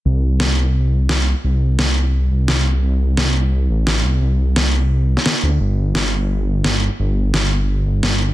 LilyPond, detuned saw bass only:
\new Staff \with { instrumentName = "Detuned saw bass" } { \clef bass \time 4/4 \key g \minor \tempo 4 = 173 c,2.~ c,8 r8 | c,2~ c,8 c,4. | c,2~ c,8 a,,4 c,8 | c,2~ c,8 r4 d,8 |
g,,2.~ g,,8 r8 | g,,2~ g,,8 g,,4. | }